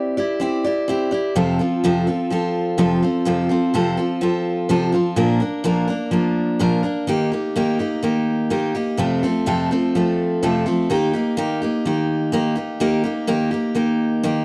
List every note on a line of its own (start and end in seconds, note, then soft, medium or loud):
0.00 0.17 C4 medium
0.00 0.17 E4 medium
0.00 0.17 G4 medium
0.00 0.16 D5 medium
0.17 0.40 E4 medium
0.17 0.40 G4 medium
0.17 0.41 D5 medium
0.40 0.64 C4 medium
0.40 0.64 E4 medium
0.40 0.65 G4 medium
0.40 0.63 D5 medium
0.64 0.88 E4 medium
0.64 0.88 G4 medium
0.64 0.88 D5 medium
0.88 1.12 C4 medium
0.88 1.12 E4 medium
0.88 1.11 G4 medium
0.88 1.10 D5 medium
1.11 1.36 E4 soft
1.11 1.36 G4 medium
1.11 1.35 D5 medium
1.35 1.59 F2 medium
1.35 1.59 C3 medium
1.35 1.60 F3 medium
1.35 1.59 C4 medium
1.35 1.59 F4 medium
1.35 1.58 A4 medium
1.59 1.83 F3 soft
1.59 1.84 C4 soft
1.59 1.84 F4 soft
1.59 1.83 A4 medium
1.84 2.07 F2 medium
1.84 2.08 C3 medium
1.84 2.08 F3 medium
1.84 2.07 C4 medium
1.84 2.06 F4 medium
1.84 2.06 A4 medium
2.07 2.29 F3 soft
2.07 2.30 C4 soft
2.07 2.31 F4 medium
2.07 2.31 A4 medium
2.30 2.78 F3 medium
2.30 2.77 C4 medium
2.30 2.79 F4 medium
2.30 2.78 A4 medium
2.78 3.02 F2 medium
2.78 3.02 C3 medium
2.78 3.02 F3 medium
2.78 3.02 C4 medium
2.78 3.02 F4 medium
2.78 3.01 A4 medium
3.02 3.25 F3 soft
3.02 3.25 C4 medium
3.02 3.26 F4 medium
3.02 3.26 A4 medium
3.25 3.50 F2 medium
3.25 3.50 C3 medium
3.25 3.50 F3 medium
3.25 3.50 C4 medium
3.25 3.49 F4 medium
3.25 3.48 A4 medium
3.49 3.73 F3 soft
3.49 3.74 C4 soft
3.49 3.74 F4 soft
3.49 3.73 A4 soft
3.74 3.98 F2 medium
3.74 3.98 C3 medium
3.74 3.98 F3 medium
3.74 3.97 C4 medium
3.74 3.96 F4 medium
3.74 3.96 A4 medium
3.97 4.20 F3 soft
3.97 4.20 C4 soft
3.97 4.21 F4 soft
3.97 4.21 A4 medium
4.21 4.68 F3 medium
4.21 4.69 C4 medium
4.21 4.69 F4 medium
4.21 4.70 A4 medium
4.69 4.93 F2 medium
4.69 4.93 C3 medium
4.69 4.93 F3 medium
4.69 4.93 C4 medium
4.69 4.93 F4 medium
4.69 4.91 A4 medium
4.92 5.15 F3 soft
4.92 5.17 C4 soft
4.92 5.17 F4 medium
4.92 5.17 A4 medium
5.16 5.40 A#2 medium
5.16 5.41 F3 medium
5.16 5.41 A#3 medium
5.16 5.40 D4 medium
5.16 5.39 A#4 loud
5.40 5.64 A#3 soft
5.40 5.64 D4 medium
5.40 5.64 A#4 medium
5.64 5.88 A#2 medium
5.64 5.88 F3 medium
5.64 5.89 A#3 medium
5.64 5.88 D4 medium
5.64 5.86 A#4 loud
5.88 6.11 A#3 soft
5.88 6.12 D4 medium
5.88 6.12 A#4 medium
6.11 6.59 F3 medium
6.11 6.59 A#3 medium
6.11 6.59 D4 medium
6.11 6.60 A#4 medium
6.59 6.84 A#2 medium
6.59 6.84 F3 medium
6.59 6.84 A#3 medium
6.59 6.83 D4 medium
6.59 6.82 A#4 medium
6.83 7.07 A#3 soft
6.83 7.08 D4 soft
6.83 7.07 A#4 medium
7.07 7.31 D#3 medium
7.07 7.32 A#3 medium
7.07 7.32 D#4 medium
7.07 7.30 G4 medium
7.32 7.55 A#3 soft
7.32 7.55 D#4 medium
7.32 7.55 G4 medium
7.56 7.79 D#3 medium
7.56 7.80 A#3 medium
7.56 7.79 D#4 medium
7.56 7.78 G4 medium
7.79 8.02 A#3 soft
7.79 8.02 D#4 medium
7.79 8.03 G4 medium
8.03 8.49 D#3 medium
8.03 8.50 A#3 medium
8.03 8.50 D#4 medium
8.03 8.50 G4 medium
8.50 8.75 D#3 medium
8.50 8.75 A#3 medium
8.50 8.74 D#4 medium
8.50 8.73 G4 medium
8.75 8.99 A#3 soft
8.75 8.99 D#4 medium
8.75 8.99 G4 medium
8.97 9.22 F2 medium
8.97 9.22 C3 medium
8.97 9.22 F3 medium
8.97 9.23 A3 medium
8.97 9.23 C4 medium
8.97 9.22 A4 medium
9.23 9.46 F3 soft
9.23 9.46 A3 soft
9.23 9.46 C4 medium
9.23 9.47 A4 medium
9.46 9.70 F2 medium
9.46 9.70 C3 medium
9.46 9.71 F3 medium
9.46 9.70 A3 medium
9.46 9.71 C4 medium
9.46 9.70 A4 medium
9.71 9.94 F3 soft
9.71 9.94 A3 medium
9.71 9.95 C4 medium
9.71 9.95 A4 medium
9.95 10.42 F3 medium
9.95 10.42 A3 medium
9.95 10.42 C4 medium
9.95 10.43 A4 medium
10.43 10.66 F2 medium
10.43 10.66 C3 medium
10.43 10.66 F3 medium
10.43 10.66 A3 medium
10.43 10.65 C4 medium
10.43 10.65 A4 medium
10.66 10.89 F3 soft
10.66 10.90 A3 soft
10.66 10.90 C4 medium
10.66 10.90 A4 medium
10.90 11.14 D#3 medium
10.90 11.14 A#3 medium
10.90 11.13 D#4 medium
10.90 11.12 G4 medium
11.13 11.36 A#3 soft
11.13 11.37 D#4 medium
11.13 11.37 G4 medium
11.37 11.61 D#3 medium
11.37 11.61 A#3 medium
11.37 11.62 D#4 medium
11.37 11.60 G4 medium
11.62 11.85 A#3 soft
11.62 11.86 D#4 medium
11.62 11.85 G4 medium
11.85 12.31 D#3 medium
11.85 12.32 A#3 medium
11.85 12.32 D#4 medium
11.85 12.33 G4 medium
12.32 12.56 D#3 medium
12.32 12.57 A#3 medium
12.32 12.56 D#4 medium
12.32 12.54 G4 medium
12.56 12.80 A#3 soft
12.56 12.80 D#4 soft
12.56 12.80 G4 medium
12.80 13.04 D#3 medium
12.80 13.04 A#3 medium
12.80 13.04 D#4 medium
12.80 13.02 G4 medium
13.03 13.27 A#3 soft
13.03 13.27 D#4 soft
13.03 13.27 G4 medium
13.27 13.51 D#3 medium
13.27 13.52 A#3 medium
13.27 13.52 D#4 medium
13.27 13.50 G4 medium
13.51 13.74 A#3 soft
13.51 13.75 D#4 medium
13.51 13.75 G4 medium
13.75 14.22 D#3 medium
13.75 14.23 A#3 medium
13.75 14.23 D#4 medium
13.75 14.24 G4 medium
14.23 14.45 D#3 medium
14.23 14.45 A#3 medium
14.23 14.45 D#4 medium
14.23 14.45 G4 medium